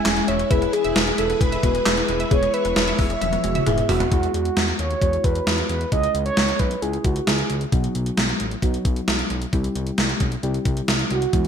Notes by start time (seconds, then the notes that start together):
Already playing: G#3 C#4 E4 G#5
0.05 E1 G#3 C#4 E4 G#4, snare, clap, closed hi-hat
0.17 G#3, closed hi-hat
0.28 E1 C#5 E5, closed hi-hat
0.39 C#4, closed hi-hat
0.50 E1 E3 G#3 B3 E4 G#4 B4 E5, kick, closed hi-hat
0.62 B3, closed hi-hat
0.73 G#3 G#4, closed hi-hat
0.84 E1 E5, closed hi-hat
0.96 E1 B3, snare, closed hi-hat
1.07 G#3, closed hi-hat
1.18 E1 A4 E5, closed hi-hat
1.30 B3, closed hi-hat
1.41 E1 G#3 B4, kick, closed hi-hat
1.52 E5, closed hi-hat
1.63 E1 G#3 B3 E4 F#4, kick, closed hi-hat
1.75 G#3, closed hi-hat
1.86 E1 G#3 B3 E4 G#4 E5, snare, clap, closed hi-hat
1.97 B3, closed hi-hat
2.09 E1 G#3, closed hi-hat
2.20 E5, closed hi-hat
2.31 E1 G#3 B3 E4 G#4 C#5, kick, closed hi-hat
2.42 G#3, closed hi-hat
2.54 B4 E5, closed hi-hat
2.65 E1 B3, closed hi-hat
2.76 E1 G#3, snare, closed hi-hat
2.88 E5, closed hi-hat
2.98 E1 B3 E5, kick, open hi-hat
3.10 G#3, closed hi-hat
3.21 E1 E5, closed hi-hat, high tom
3.33 B3, closed hi-hat, high tom
3.44 E1 G#3 B3 E4 F#4, closed hi-hat
3.55 E5, closed hi-hat, mid tom
3.66 E1 G#3 B3 E4 G#4, closed hi-hat, mid tom
3.78 G#3, closed hi-hat
3.89 E1 F#4 E5, floor tom, open hi-hat
4.00 B3, closed hi-hat, floor tom
4.12 E2 G#3 B3 E4 F#4 G#4, kick, closed hi-hat
4.23 closed hi-hat
4.34 E2 F#4, closed hi-hat
4.45 closed hi-hat
4.57 E2, snare, closed hi-hat
4.68 closed hi-hat
4.79 D#2 C#5, closed hi-hat
4.91 closed hi-hat
5.02 E2 G#3 B3 E4 F#4, kick, closed hi-hat
5.13 closed hi-hat
5.24 E2 B4, kick, closed hi-hat
5.35 closed hi-hat
5.47 E2, snare, closed hi-hat
5.58 closed hi-hat
5.69 E2 B4, closed hi-hat
5.81 closed hi-hat
5.92 C#2 G#3 C#4 E4 G#4 D#5, kick, closed hi-hat
6.03 closed hi-hat
6.14 C#2, closed hi-hat
6.26 C#5, closed hi-hat
6.37 C#2, snare, closed hi-hat
6.48 closed hi-hat
6.59 B1 B4, kick, closed hi-hat
6.71 closed hi-hat
6.82 C#2 G#3 C#4 E4 G#4, closed hi-hat
6.93 closed hi-hat
7.04 C#2 F#4, kick, closed hi-hat
7.16 closed hi-hat
7.27 C#2 G#4, snare, closed hi-hat
7.38 closed hi-hat
7.50 C#2, closed hi-hat
7.61 closed hi-hat
7.72 B1 F#3 B3 D#4 F#4, kick, closed hi-hat
7.84 closed hi-hat
7.95 B1, closed hi-hat
8.06 closed hi-hat
8.17 B1, snare, closed hi-hat
8.29 closed hi-hat
8.40 A1, closed hi-hat
8.51 closed hi-hat
8.62 B1 F#3 B3 D#4 F#4, kick, closed hi-hat
8.74 closed hi-hat
8.85 B1, kick, closed hi-hat
8.96 closed hi-hat
9.08 B1, snare, closed hi-hat
9.19 closed hi-hat
9.30 B1, closed hi-hat
9.42 closed hi-hat
9.53 C2 G3 C4 E4 G4, kick, closed hi-hat
9.64 closed hi-hat
9.75 C2, closed hi-hat
9.87 closed hi-hat
9.98 C2, snare, closed hi-hat
10.09 closed hi-hat
10.20 B1, kick, closed hi-hat
10.32 closed hi-hat
10.43 C2 G3 C4 E4 G4, closed hi-hat
10.54 closed hi-hat
10.65 C2, kick, closed hi-hat
10.77 closed hi-hat
10.88 C2, snare, closed hi-hat
10.99 closed hi-hat
11.11 C2 F#4, closed hi-hat
11.22 closed hi-hat
11.33 E2 G#3 B3 E4 G#4, kick, closed hi-hat
11.45 closed hi-hat